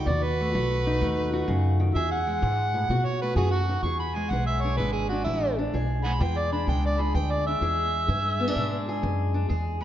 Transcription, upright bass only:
0.07 0.53 D#2 medium
0.55 1.00 B1 medium
1.01 1.47 D#2 medium
1.48 1.94 F#2 loud
1.95 2.41 E2 medium
2.43 2.88 G#2 loud
2.89 3.35 B2 medium
3.36 3.82 F#2 medium
3.83 4.29 E2 medium
4.31 4.77 B1 medium
4.78 5.24 G#1 medium
5.26 5.72 A1 medium
5.74 6.19 B1 medium
6.20 6.66 E2 medium
6.67 7.13 C#2 medium
7.14 7.60 D2 medium
7.61 8.07 E2 medium
8.08 8.54 G2 medium
8.56 9.02 G#2 medium
9.03 9.49 F#2 loud
9.50 9.84 E2 medium

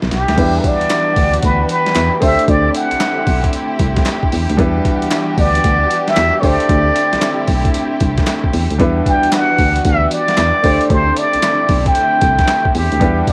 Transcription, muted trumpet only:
0.14 0.67 G4 medium
0.65 1.44 D5 medium
1.44 1.68 B4 medium
1.71 2.25 B4 loud
2.23 2.51 E5 loud
2.50 2.75 D5 loud
2.76 3.50 F#5 loud
5.39 6.11 D5 loud
6.09 6.41 E5 loud
6.40 6.46 C#5 medium
6.44 7.49 D5 loud
9.08 9.36 G5 loud
9.34 9.88 F#5 loud
9.87 10.12 E5 loud
10.13 10.94 D5 loud
10.92 11.20 C5 loud
11.18 11.87 D5 loud
11.88 12.77 G5 medium
12.76 13.28 G4 medium
13.29 13.33 D5 medium

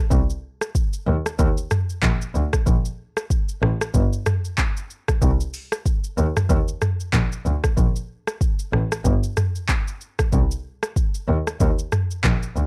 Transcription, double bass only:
0.11 0.19 C2 loud
1.07 1.15 D#2 loud
1.39 1.47 D#2 loud
2.03 2.11 A#1 loud
2.35 2.43 D2 medium
2.67 2.75 A#1 loud
3.62 3.70 A1 loud
3.94 4.02 G1 loud
5.22 5.30 C2 loud
6.18 6.26 D#2 loud
6.50 6.58 D#2 loud
7.13 7.21 A#1 loud
7.45 7.53 D2 medium
7.77 7.85 A#1 loud
8.73 8.81 A1 medium
9.05 9.13 G1 loud
10.33 10.41 C2 loud
11.28 11.36 D#2 loud
11.60 11.68 D#2 loud
12.24 12.32 A#1 loud
12.56 12.64 D2 loud

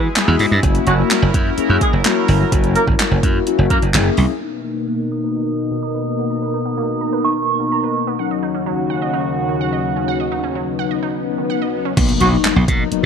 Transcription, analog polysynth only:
0.16 0.55 G#3 medium
0.16 0.55 B3 medium
0.16 0.55 E4 medium
0.16 0.55 F#4 loud
0.63 0.92 A#3 medium
0.63 0.92 C#4 medium
0.63 0.92 E4 medium
0.63 0.92 F#4 medium
0.98 1.28 A#3 medium
0.98 1.28 C#4 medium
0.98 1.28 E4 medium
0.98 1.28 F#4 medium
1.34 1.53 A#3 loud
1.34 1.53 C#4 medium
1.34 1.54 E4 medium
1.34 1.54 F#4 loud
1.57 1.96 A#3 loud
1.57 1.96 C#4 medium
1.57 1.97 E4 medium
1.57 1.97 G#4 loud
2.05 2.44 A#3 medium
2.05 2.44 C#4 medium
2.05 2.44 E4 medium
2.05 2.44 F#4 loud
2.52 2.81 A#3 medium
2.52 2.81 C#4 medium
2.52 2.81 E4 medium
2.52 2.81 F#4 loud
2.87 3.17 A#3 medium
2.87 3.17 C#4 medium
2.87 3.17 E4 medium
2.87 3.17 F#4 medium
3.23 3.42 A#3 medium
3.23 3.42 C#4 medium
3.23 3.43 E4 medium
3.23 3.43 F#4 loud
3.46 3.85 A#3 medium
3.46 3.85 C#4 medium
3.46 3.86 E4 medium
3.46 3.86 F#4 loud
3.94 4.33 A#3 medium
3.94 4.33 C#4 medium
3.94 4.33 E4 medium
3.94 4.33 G#4 loud
4.41 8.15 A#3 medium
4.41 8.15 B3 medium
4.41 8.15 D#4 medium
8.19 11.93 F#3 medium
8.19 11.93 C#4 medium
8.19 11.93 D#4 medium
11.97 12.26 F#3 medium
11.97 12.26 A#3 medium
11.97 12.26 B3 medium
11.97 12.26 D#4 medium
12.32 12.62 F#3 medium
12.32 12.62 A#3 medium
12.32 12.62 B3 medium
12.32 12.62 D#4 medium
12.68 12.87 F#3 medium
12.68 12.87 A#3 medium
12.68 12.87 B3 medium
12.68 12.88 D#4 loud
12.92 13.06 F#3 loud
12.92 13.06 A#3 medium
12.92 13.06 B3 medium
12.92 13.06 D#4 loud

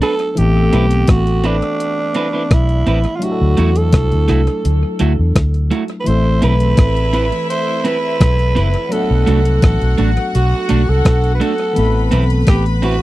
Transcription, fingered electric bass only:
0.39 0.72 A1 loud
0.74 1.08 B1 loud
1.09 1.60 A1 loud
2.51 2.85 B1 loud
2.87 3.04 A1 loud
3.41 3.58 D2 medium
3.59 3.92 E2 medium
3.93 4.11 C2 loud
4.13 4.29 D2 medium
4.30 4.47 C2 medium
4.65 4.82 D2 loud
5.01 5.18 D2 medium
5.19 5.36 E2 medium
5.36 5.70 D2 loud
6.08 6.42 A1 loud
6.44 6.77 B1 loud
6.78 7.30 A1 loud
8.21 8.55 B1 loud
8.57 8.74 F#1 medium
9.11 9.27 B1 loud
9.28 9.62 C2 loud
9.63 9.81 A1 loud
9.82 9.98 B1 medium
9.99 10.16 A1 medium
10.35 10.52 B1 loud
10.71 10.88 B1 medium
10.89 11.05 C2 medium
11.06 11.40 B1 medium
11.78 12.11 A1 loud
12.13 12.47 B1 loud
12.48 12.99 A1 loud

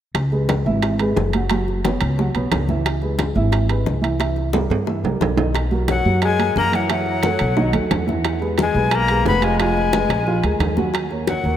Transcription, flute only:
5.90 6.20 F#5 medium
6.24 6.54 G#5 medium
6.58 6.77 A#5 medium
6.75 6.91 F#5 medium
6.92 7.88 F#5 medium
8.62 8.97 G#5 medium
8.95 9.27 A#5 loud
9.28 9.45 B5 medium
9.44 9.60 G#5 medium
9.60 10.57 G#5 medium
11.28 11.57 F#5 medium

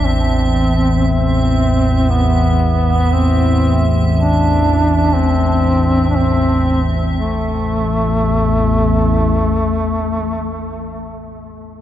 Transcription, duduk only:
0.05 1.07 C4 medium
1.08 2.11 C4 medium
2.10 3.13 B3 medium
3.12 3.87 C4 medium
4.14 5.15 D4 medium
5.14 6.09 C4 medium
6.10 6.17 D4 medium
6.16 6.93 C4 medium
7.17 10.62 A3 medium

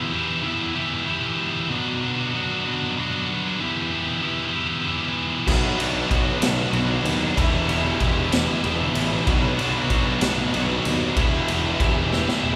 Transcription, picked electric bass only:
5.47 5.71 B1 loud
5.78 6.02 B1 loud
6.11 6.34 B1 medium
6.41 6.64 B1 loud
6.73 6.97 B1 loud
7.04 7.28 D#2 medium
7.37 7.60 E1 loud
7.68 7.92 E1 loud
8.01 8.47 E1 loud
8.64 8.87 E1 medium
8.95 9.18 A1 loud
9.27 9.50 B1 loud
9.60 9.82 B1 loud
9.90 10.13 B1 loud
10.22 10.45 B1 loud
10.56 10.78 B1 loud
10.86 11.09 D#2 medium
11.16 11.40 E1 loud
11.50 11.72 E1 medium
11.80 12.26 E1 loud
12.44 12.56 E1 medium

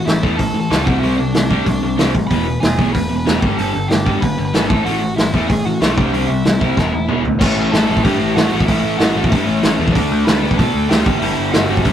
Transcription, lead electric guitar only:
0.06 0.38 E4 medium
0.06 0.39 E5 medium
0.37 0.62 A4 medium
0.37 0.60 A5 loud
0.61 0.86 A4 medium
0.61 0.87 A5 medium
0.84 1.02 F#4 medium
0.84 1.00 F#5 medium
1.00 1.18 E4 medium
1.00 1.18 E5 medium
1.16 2.11 D4 medium
1.16 2.09 D5 loud
2.27 2.60 B4 medium
2.27 2.58 B5 loud
2.60 2.93 G#4 medium
2.60 2.92 G#5 medium
2.93 3.18 B4 medium
2.93 3.15 B5 loud
3.16 3.41 B4 medium
3.16 3.42 B5 loud
3.40 3.57 G4 medium
3.40 3.56 G5 medium
3.58 3.89 A4 medium
3.58 3.91 A5 medium
3.88 4.21 G4 medium
3.88 4.22 G5 medium
4.21 4.45 B4 medium
4.21 4.44 B5 loud
4.45 4.69 B4 medium
4.45 4.68 B5 loud
4.68 4.86 A4 medium
4.68 4.84 A5 medium
4.85 5.16 F#4 medium
4.85 5.16 F#5 medium
5.16 5.48 E4 medium
5.16 5.48 E5 medium
5.49 5.65 G#4 medium
5.49 5.65 G#5 medium
5.65 5.81 F#4 medium
5.65 5.80 F#5 medium
5.80 5.97 E4 medium
5.80 5.97 E5 medium
5.97 6.28 D4 medium
5.97 6.27 D5 medium
6.27 6.59 E4 medium
6.27 6.58 E5 medium
6.60 7.21 E4 medium
6.60 7.20 E5 medium
7.39 7.70 C#4 medium
7.39 7.73 C#5 medium
7.72 8.02 A4 medium
7.72 8.05 A5 loud
8.03 8.34 G4 medium
8.03 8.35 G5 loud
8.36 8.66 F#4 medium
8.36 8.66 F#5 medium
8.66 8.97 E4 medium
8.66 8.97 E5 medium
8.97 9.29 F#4 medium
8.97 9.30 F#5 medium
9.30 9.46 E4 medium
9.30 9.46 E5 loud
9.46 9.77 C#4 medium
9.46 9.76 C#5 medium
9.93 10.25 D4 medium
9.93 10.27 D5 medium
10.25 10.57 B4 medium
10.25 10.55 B5 loud
10.58 10.89 A4 medium
10.58 10.88 A5 loud
10.89 11.21 G4 medium
10.89 11.19 G5 medium
11.20 11.52 E4 medium
11.20 11.51 E5 loud
11.52 11.83 F#4 medium
11.52 11.82 F#5 medium
11.83 11.93 E4 medium
11.83 11.93 E5 loud

